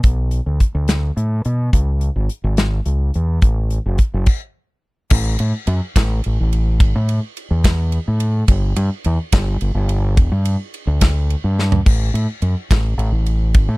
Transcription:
0.03 fingered electric bass B1, kick, closed hi-hat
0.31 closed hi-hat
0.46 fingered electric bass D2
0.60 kick, closed hi-hat
0.75 fingered electric bass D2
0.88 snare, closed hi-hat
1.17 fingered electric bass A2, closed hi-hat
1.45 fingered electric bass B2, closed hi-hat
1.73 fingered electric bass C#2, kick, closed hi-hat
2.01 closed hi-hat
2.16 fingered electric bass G#1
2.29 closed hi-hat
2.44 fingered electric bass G#1
2.57 snare, closed hi-hat
2.86 fingered electric bass C#2, closed hi-hat
3.14 fingered electric bass E2, closed hi-hat
3.42 fingered electric bass A1, kick, closed hi-hat
3.70 closed hi-hat
3.86 fingered electric bass F#1
3.98 kick, closed hi-hat
4.14 fingered electric bass F#1
4.26 kick, crash
5.10 fingered electric bass A1, kick, crash
5.39 fingered electric bass A2, ride
5.67 fingered electric bass F#2, ride
5.96 fingered electric bass A1, kick, snare, ride
6.24 fingered electric bass A1, ride
6.41 fingered electric bass A1
6.53 ride
6.80 fingered electric bass G#1, kick, ride
6.96 fingered electric bass A2
7.09 ride
7.37 ride
7.51 fingered electric bass E2
7.64 kick, snare, ride
7.92 ride
8.08 fingered electric bass A2
8.20 ride
8.48 fingered electric bass G1, kick, ride
8.76 fingered electric bass G2, ride
9.04 fingered electric bass E2, ride
9.32 fingered electric bass G1, kick, snare, ride
9.61 fingered electric bass G1, ride
9.75 fingered electric bass G1
9.89 ride
10.17 fingered electric bass E1, kick, ride
10.32 fingered electric bass G2
10.45 ride
10.74 ride
10.87 fingered electric bass D2
11.01 kick, snare, ride
11.30 ride
11.44 fingered electric bass G2
11.59 snare
11.72 floor tom
11.86 fingered electric bass A1, kick, crash
12.14 fingered electric bass A2, ride
12.42 fingered electric bass F#2, ride
12.70 fingered electric bass A1, kick, snare, ride
12.98 fingered electric bass A1, ride
13.12 fingered electric bass A1
13.26 ride
13.54 fingered electric bass G#1, kick, ride
13.69 fingered electric bass A2

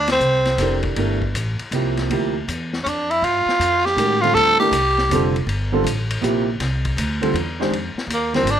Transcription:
Already playing: upright bass D2, tenor saxophone D4
0.07 snare, ride
0.12 tenor saxophone C4
0.19 upright bass C2, hi-hat pedal
0.45 snare, ride
0.58 upright bass F1, upright piano E3 D4 G4 A4 A#4, snare, hi-hat pedal, ride
0.83 kick, ride
0.96 upright bass G1, upright piano E3 A3 D4 G4 A#4, ride
1.22 kick
1.35 upright bass A1, hi-hat pedal, ride
1.59 ride
1.71 upright bass C2, upright piano C3 F3 A#3 E4 G4, hi-hat pedal, ride
1.97 snare, ride
2.09 upright bass D2, upright piano C3 F3 A#3 E4 G4, ride
2.48 upright bass E2, hi-hat pedal, ride
2.73 snare
2.83 upright bass F2, tenor saxophone C#4, hi-hat pedal, ride
2.88 tenor saxophone D4
3.11 tenor saxophone E4, ride
3.22 upright bass G2, tenor saxophone F4, ride
3.46 muted upright bass stroke, snare
3.59 upright bass F2, hi-hat pedal, ride
3.85 tenor saxophone G4, snare
3.96 upright bass A2, upright piano D#3 G#3 C#4 F#4 A#4, hi-hat pedal, ride
4.21 upright piano D3 G3 C4 F4 A4, tenor saxophone F4, ride
4.34 upright bass D2, tenor saxophone A4, ride
4.60 upright piano E3 A3 D4 G4 A#4, tenor saxophone G4
4.71 upright bass C2, hi-hat pedal, ride
4.98 snare
5.09 upright bass F1, upright piano D3 G3 C4 F4 A4, hi-hat pedal, ride
5.36 ride
5.47 upright bass G1, ride
5.72 upright piano D3 G3 C4 F4 A4
5.84 upright bass A1, hi-hat pedal, ride
6.10 ride
6.21 upright bass A#1, upright piano C3 F3 A#3 E4 G4, hi-hat pedal
6.60 upright bass C2, snare, ride
6.85 kick, ride
6.97 upright bass D2, hi-hat pedal, ride
7.21 upright piano D3 G3 C4 F4 A4, ride
7.34 upright bass E2, ride
7.59 upright piano D#3 G#3 D4 G4 C5, snare
7.70 upright bass F2, ride
7.95 muted upright bass stroke, snare
8.07 upright bass D#2, hi-hat pedal, ride
8.14 tenor saxophone A#3
8.33 upright piano D3 G3 C4 F4 A#4, tenor saxophone C4, snare, ride
8.43 upright bass G#1, hi-hat pedal, ride
8.50 tenor saxophone D4

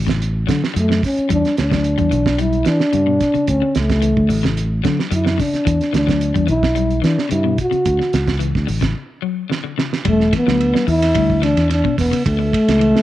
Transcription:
Already playing: fingered electric bass A1
0.07 clean electric guitar C#3, kick, snare, closed hi-hat
0.22 closed hi-hat
0.47 fingered electric bass D3, clean electric guitar F#3, kick, snare, closed hi-hat
0.64 snare
0.74 fingered electric bass F#2, clean electric guitar D3, closed hi-hat
0.78 trombone A3
0.89 clean electric guitar D3, snare
1.03 trombone C#4, kick, snare, open hi-hat
1.18 muted fingered electric bass stroke, closed hi-hat
1.29 fingered electric bass E2, clean electric guitar G3, trombone D4, kick, closed hi-hat
1.45 snare, closed hi-hat
1.57 fingered electric bass D2, trombone D4, snare, closed hi-hat
1.71 clean electric guitar F#3, kick, snare, closed hi-hat
1.84 closed hi-hat
1.98 fingered electric bass E2, clean electric guitar G3, kick, closed hi-hat
2.11 fingered electric bass B1, clean electric guitar E3, closed hi-hat
2.26 kick, snare
2.38 clean electric guitar G3, trombone E4, closed hi-hat
2.53 closed hi-hat
2.65 fingered electric bass E3, trombone D4, muted clean electric guitar stroke, snare, closed hi-hat
2.80 snare
2.93 fingered electric bass G2, clean electric guitar C#3, closed hi-hat
3.07 clean electric guitar B2
3.21 kick, snare, closed hi-hat
3.34 clean electric guitar C#3, muted fingered electric bass stroke, closed hi-hat
3.47 fingered electric bass D2, trombone C#4, kick, closed hi-hat
3.62 clean electric guitar D3
3.75 fingered electric bass C#2, trombone A3, snare, closed hi-hat
3.89 kick, snare, closed hi-hat
4.02 clean electric guitar E3, closed hi-hat
4.17 fingered electric bass D2, kick
4.29 fingered electric bass A1, clean electric guitar D3, open hi-hat
4.43 clean electric guitar C#3, kick, snare, closed hi-hat
4.57 closed hi-hat
4.84 fingered electric bass D3, clean electric guitar F#3, kick, snare, closed hi-hat
4.99 snare
5.11 fingered electric bass F#2, clean electric guitar D3, trombone E4, closed hi-hat
5.25 clean electric guitar D3, snare
5.38 clean electric guitar C#3, trombone D4, kick, snare, open hi-hat
5.53 muted fingered electric bass stroke, snare, closed hi-hat
5.65 fingered electric bass E2, clean electric guitar E3, kick, closed hi-hat
5.81 snare, closed hi-hat
5.93 fingered electric bass D2, clean electric guitar E3, trombone D4, snare, closed hi-hat
6.07 clean electric guitar F#3, kick, snare, closed hi-hat
6.21 closed hi-hat
6.34 fingered electric bass E2, clean electric guitar G3, kick, closed hi-hat
6.47 fingered electric bass B1, clean electric guitar E3, trombone E4, closed hi-hat
6.63 kick, snare
6.75 clean electric guitar G3, closed hi-hat
6.91 closed hi-hat
7.02 clean electric guitar E3, fingered electric bass E3, trombone D4, snare, closed hi-hat
7.18 snare
7.29 fingered electric bass G2, clean electric guitar C#3, trombone E4, closed hi-hat
7.44 clean electric guitar B2
7.58 trombone F#4, kick, closed hi-hat
7.71 clean electric guitar C#3, muted fingered electric bass stroke, closed hi-hat
7.85 fingered electric bass D2, kick, closed hi-hat
7.99 clean electric guitar D3, snare
8.13 fingered electric bass C#2, snare, closed hi-hat
8.27 kick, snare, closed hi-hat
8.39 clean electric guitar E3, closed hi-hat
8.55 fingered electric bass D2, kick, snare
8.67 fingered electric bass A1, clean electric guitar D3, open hi-hat
8.81 clean electric guitar C#3, kick, snare, closed hi-hat
9.22 clean electric guitar F#3
9.50 clean electric guitar D3, snare
9.64 clean electric guitar D3
9.78 clean electric guitar C#3, snare
9.93 snare
10.05 fingered electric bass E1, clean electric guitar G3, trombone A3, kick, ride bell
10.20 snare
10.33 clean electric guitar E3, kick, snare, ride bell
10.37 trombone B3
10.47 fingered electric bass D2, clean electric guitar F#3, snare
10.61 ride bell
10.74 clean electric guitar G3, snare
10.87 fingered electric bass E2, clean electric guitar E3, trombone E4, open hi-hat
11.02 snare, ride bell
11.15 fingered electric bass D2, clean electric guitar G3, kick, ride bell
11.30 kick
11.42 clean electric guitar E3, trombone D4, snare, ride bell
11.57 fingered electric bass E2, snare, ride bell
11.70 trombone D4, muted clean electric guitar stroke, snare, ride bell
11.84 clean electric guitar B2, kick
11.98 fingered electric bass E1, trombone B3, kick, snare, open hi-hat
12.11 clean electric guitar C#3, ride bell
12.26 fingered electric bass D2, trombone A3, kick, ride bell
12.39 clean electric guitar D3
12.53 kick, ride bell
12.68 fingered electric bass C#2, snare, ride bell
12.79 clean electric guitar E3, ride bell
12.96 snare

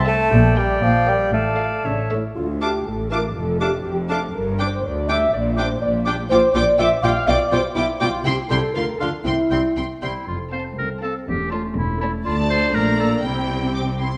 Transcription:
Already playing: double bass section C2, cello section C3, clarinet E5, oboe A5
0.07 bassoon A3, viola section A4, french horn section A4 C5, violin section E5 A5, flute A5
0.31 double bass section A#1, cello section A#2, clarinet D5, oboe G5
0.57 bassoon G3, french horn section G4 D5, viola section A#4, violin section D5 G5, flute G5
0.82 double bass section A#1, cello section A#2, bassoon F3, flute F5
1.07 bassoon G3, french horn section G4 D5, viola section A#4, violin section D5 G5, flute G5
1.32 double bass section A1, cello section A2, bassoon A3, clarinet D5, oboe F5, flute A5
1.59 french horn section F4 D5, viola section A4, violin section D5 F5
1.85 double bass section A1, cello section C#3, french horn section D4, clarinet C#5, oboe E5
2.11 cello section A2, french horn section E4 A4 C#5, viola section A4, violin section C#5 E5
2.36 cello section D2, double bass section D2, french horn section F4
2.60 bassoon A3, clarinet D4, viola section F4, french horn section G4, oboe F5, violin section A5 D6, flute D6
2.86 double bass section A1, cello section A2, french horn section A4
3.11 bassoon A3, clarinet D4, viola section F4, french horn section A#4, oboe F5, violin section A5 D6, flute D6
3.35 double bass section F1, cello section F2, french horn section A4
3.60 bassoon A3, clarinet D4, viola section D4, french horn section G4, oboe F5, violin section A5 D6, flute D6
3.84 double bass section F1, cello section F2, french horn section G4
4.09 bassoon A3, clarinet D4, viola section D4, french horn section A4, oboe F5, violin section A5 D6, flute D6
4.34 double bass section G1, cello section G2, french horn section A#4
4.59 bassoon G3, clarinet D4, viola section D4, french horn section C5, violin section G5 D6, oboe G5, flute D6
4.84 cello section D2, double bass section D2, french horn section D5
5.08 bassoon G3, clarinet D4, viola section D4, french horn section E5, violin section G5 D6, oboe G5, flute D6
5.33 double bass section A#1, cello section A#2, french horn section D5
5.56 bassoon G3, clarinet D4, viola section D4, french horn section C5, oboe G5, violin section G5 D6, flute D6
5.82 double bass section A#1, cello section A#2, french horn section D5
6.05 bassoon G3, clarinet D4, viola section D4, oboe G5, violin section G5 D6, flute D6
6.30 double bass section A#1, cello section A#2, viola section F4, french horn section C5, violin section G5 D6
6.53 double bass section A#1, cello section A#2, bassoon G3, viola section F4, clarinet F4, french horn section D5, oboe G5, violin section G5 D6, flute D6
6.79 double bass section A#1, cello section A#2, viola section F4, french horn section E5, violin section G5 D6
7.02 double bass section A#1, cello section A#2, bassoon G3, clarinet F4, viola section F4, french horn section F5, oboe G5, violin section G5 D6, flute D6
7.27 double bass section B1, cello section B2, viola section F4, french horn section D5, violin section G5 D6
7.50 double bass section B1, cello section B2, bassoon G3, clarinet F4, viola section F4, french horn section C5, oboe G5, violin section G5 D6, flute D6
7.75 double bass section B1, cello section B2, french horn section E4, viola section F4, violin section G5 D6
8.00 double bass section B1, cello section B2, bassoon G3, french horn section F4, clarinet F4, viola section F4, oboe G5, violin section G5 D6, flute D6
8.24 double bass section C2, cello section C3, viola section E4, french horn section G4, violin section G5 C6
8.49 double bass section C2, cello section C3, bassoon G3, clarinet E4, viola section E4, french horn section A4, violin section G5 C6, oboe G5, flute C6
8.74 double bass section D2, cello section D3, viola section F4, french horn section A#4, violin section F5 C6
8.99 double bass section D2, cello section D3, bassoon D3, clarinet D4, viola section F4, french horn section A4, oboe F5, violin section F5 C6, flute C6
9.24 double bass section C2, cello section C3, viola section C4, french horn section E4, violin section G5 C6
9.51 double bass section C2, cello section C3, bassoon G3, viola section C4, clarinet C4, oboe G5, violin section G5 C6, flute C6
9.77 double bass section C2, cello section C3, viola section C4, violin section G5 C6
10.02 double bass section C2, cello section C3, bassoon G3, viola section C4, clarinet E4, oboe G5, violin section G5 C6, flute C6
10.28 double bass section F1, cello section F2, french horn section C4 A4, clarinet F4
10.53 viola section C4, clarinet C5, violin section F5 A5
10.78 cello section C2, double bass section C2, clarinet A#4
11.03 viola section C4, clarinet A4, violin section F5 A5
11.27 double bass section E1, cello section E2, french horn section A3 C#4, clarinet G4
11.51 viola section A3, clarinet F4, violin section C#5 A5
11.76 double bass section E1, cello section E2, clarinet E4
12.01 viola section A3, clarinet E4, violin section C#5 A5
12.25 cello section D2, double bass section D2, viola section A3, french horn section D4, clarinet F4, violin section D5 A5
12.50 clarinet C5
12.74 double bass section A#1, cello section A#2, viola section A3, clarinet A#4, violin section D5 A#5
13.00 viola section A#3, clarinet A4
13.23 double bass section C2, cello section C3, french horn section G3 C4, viola section C4, clarinet E4, violin section G5
13.75 violin section D6
14.00 clarinet E4, violin section C6

